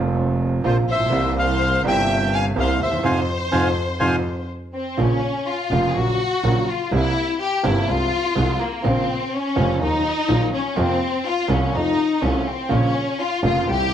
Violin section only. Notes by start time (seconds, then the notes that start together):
0.65 F4
0.89 C5
1.38 C5
1.87 E5
2.34 F5
2.58 C5
2.81 C5
3.05 C5
4.74 C4
5.00 C#4
5.47 F4
5.90 G#4
5.95 F#4
6.69 F4
6.93 E4
7.42 G4
7.66 E4
7.87 F4
8.61 A#3
8.85 C4
9.34 C#4
9.83 D#4
10.53 C#4
10.77 C4
11.27 F4
11.51 C#4
11.75 D#4
12.23 C#4
12.48 C4
12.71 C#4
13.21 F4
13.45 F4
13.71 G4